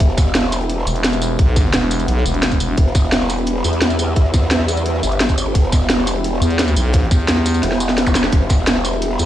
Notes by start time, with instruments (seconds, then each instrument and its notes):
Already playing: ambient pad B3 E4 G4
0.00 wobble bass E1, ambient pad F#5, kick, closed hi-hat
0.08 snare
0.18 kick, snare, closed hi-hat, tambourine
0.26 snare
0.35 snare, closed hi-hat
0.43 snare
0.52 snare, closed hi-hat, tambourine
0.61 closed hi-hat
0.69 closed hi-hat
0.79 snare
0.86 fm bass E1, closed hi-hat, tambourine
0.95 closed hi-hat
1.04 snare, closed hi-hat
1.13 closed hi-hat, tambourine
1.22 closed hi-hat, tambourine
1.39 fm bass B1, kick, closed hi-hat
1.47 snare
1.56 kick, snare, closed hi-hat, tambourine
1.65 snare
1.73 fm bass E1, snare, closed hi-hat
1.82 snare
1.91 closed hi-hat, tambourine
2.00 closed hi-hat, tambourine
2.08 fm bass B1, closed hi-hat
2.17 snare
2.26 fm bass E1, closed hi-hat, tambourine
2.34 closed hi-hat
2.42 snare, closed hi-hat
2.52 kick, closed hi-hat, tambourine
2.60 fm bass E1, closed hi-hat, tambourine
2.78 wobble bass E1, ambient pad E5, kick, closed hi-hat
2.87 snare
2.95 kick, snare, closed hi-hat, tambourine
3.04 snare
3.12 snare, closed hi-hat
3.21 snare
3.30 snare, closed hi-hat, tambourine
3.38 closed hi-hat
3.46 closed hi-hat
3.56 snare
3.64 wobble bass E2, closed hi-hat, tambourine
3.73 closed hi-hat
3.81 snare, closed hi-hat
3.90 closed hi-hat, tambourine
3.99 closed hi-hat, tambourine
4.16 kick, closed hi-hat
4.25 snare
4.34 kick, snare, closed hi-hat, tambourine
4.42 snare
4.50 snare, closed hi-hat
4.60 snare
4.68 closed hi-hat, tambourine
4.77 closed hi-hat, tambourine
4.85 closed hi-hat
4.94 snare
5.03 wobble bass G1, closed hi-hat, tambourine
5.12 closed hi-hat
5.20 snare, closed hi-hat
5.29 kick, closed hi-hat, tambourine
5.38 closed hi-hat, tambourine
5.55 wobble bass E1, ambient pad G5, kick, closed hi-hat
5.63 snare
5.72 kick, snare, closed hi-hat, tambourine
5.81 snare
5.90 snare, closed hi-hat
5.98 snare
6.07 snare, closed hi-hat, tambourine
6.16 closed hi-hat
6.24 closed hi-hat
6.34 snare
6.42 fm bass E2, closed hi-hat, tambourine
6.50 closed hi-hat
6.58 snare, closed hi-hat
6.68 closed hi-hat, tambourine
6.76 fm bass B1, closed hi-hat, tambourine
6.85 snare
6.93 kick, snare, closed hi-hat
7.02 snare
7.11 fm bass E2, kick, snare, closed hi-hat, tambourine
7.19 closed hi-hat
7.28 snare, closed hi-hat
7.37 snare
7.45 snare, closed hi-hat, tambourine
7.54 closed hi-hat, tambourine
7.63 wobble bass E1, snare, closed hi-hat
7.72 snare
7.80 closed hi-hat, tambourine
7.89 snare, closed hi-hat
7.98 snare, closed hi-hat
8.07 kick, closed hi-hat, tambourine, zap
8.15 snare, closed hi-hat, tambourine
8.24 snare
8.32 wobble bass E1, ambient pad E5, kick, closed hi-hat
8.41 snare
8.49 kick, snare, closed hi-hat, tambourine
8.58 snare
8.67 snare, closed hi-hat
8.76 snare
8.85 snare, closed hi-hat, tambourine
8.93 closed hi-hat
9.02 closed hi-hat
9.10 snare
9.18 wobble bass E2, closed hi-hat, tambourine